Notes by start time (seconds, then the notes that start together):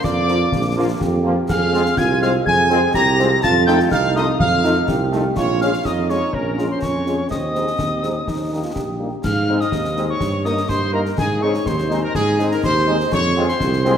0.03 F2 F4 D5 D6, concert bass drum, snare
0.27 F3 A#3 F4, snare
0.52 A#1, concert bass drum, snare
0.76 F3 A#3 F4
1.00 F2 G4, concert bass drum, snare
1.24 F3 A#3 F4
1.48 F2 G#4 F5 F6, concert bass drum, snare, crash
1.72 G#3 C4 F4 G#4, snare
1.86 snare
1.97 C2 F4 G#5 G#6, concert bass drum, snare
2.21 G#3 C4 F4 G#4 F5 F6, snare
2.46 F2 G#4 G#5 G#6, concert bass drum
2.70 G#3 C4 F4 G#4, snare
2.94 C2 G4 A#5 A#6, concert bass drum, snare
3.19 G#3 C4 F4 G#4, snare
3.42 F2 F4 A5 A6, concert bass drum, snare
3.66 A3 D#4 F4 A4 G5 G6, snare
3.80 snare
3.91 C2 D#4 F5 F6, concert bass drum, snare
4.15 A3 D#4 F4 A4 D#5 D#6, snare
4.39 F2 F4 F5 F6, concert bass drum
4.63 A3 D#4 F4 A4, snare
4.88 C2 G4, concert bass drum, snare
5.12 A3 D#4 F4 A4, snare
5.36 A#1 F4 C#5 C#6, concert bass drum, snare, crash
5.61 G#3 C#4 F4 G#4 F5 F6, snare
5.73 snare
5.85 F2 D#4 D#5 D#6, concert bass drum, snare
6.09 G#3 C#4 F4 G#4 C#5 C#6, snare
6.33 A#1 C#4 A#4 A#5, concert bass drum
6.58 G#3 C#4 F4 G#4, snare
6.69 C5 C6
6.81 F2 C#5 C#6, concert bass drum, snare
7.06 G#3 C#4 F4 G#4, snare
7.29 D#2 C4 D#5 D#6, concert bass drum, snare
7.53 G#3 C4 D#4 G#4, snare
7.67 snare
7.79 D#2 C4, concert bass drum, snare
8.03 G#3 C4 D#4 G#4, snare
8.16 C#4
8.27 D#2 D#4, concert bass drum, snare
8.51 G3 A#3 D#4 G4
8.64 F4
8.75 A#1 G4, concert bass drum, snare
8.99 G3 A#3 D#4 G4
9.24 G#2 F5 F6, concert bass drum, snare, crash
9.49 G#3 C4 D#4 G#4
9.59 D#5 D#6, snare
9.72 D#2, concert bass drum, snare
9.84 snare
9.97 G#3 C4 D#4 G#4, snare
10.09 C#5 C#6
10.21 G2, concert bass drum, snare
10.45 A#3 D#4 A#4 D#5 D#6, snare
10.57 snare
10.69 G2 C5 C6, concert bass drum, snare
10.92 A#3 D#4 A#4 A#5
11.06 snare
11.17 G#2 G#4 G#5, concert bass drum, snare, crash
11.41 G#3 C4 D#4 G#4 C#5 C#6
11.54 snare
11.66 D#2 C5 C6, concert bass drum, snare
11.78 snare
11.89 G#3 C4 D#4 G#4, snare
12.03 A#4 A#5
12.14 G#2 G#4 G#5, concert bass drum, snare
12.39 G#3 C4 D#4 G#4, snare
12.51 A#4 A#5, snare
12.63 D#2 C5 C6, concert bass drum, snare
12.88 G#3 C4 D#4 G#4
13.00 snare
13.12 F2 C#5 C#6, concert bass drum, snare, crash
13.37 G#3 C4 F4 G#4
13.49 C5 C6, snare
13.61 C2, concert bass drum, snare
13.73 snare
13.85 G#3 C4 F4 G#4, snare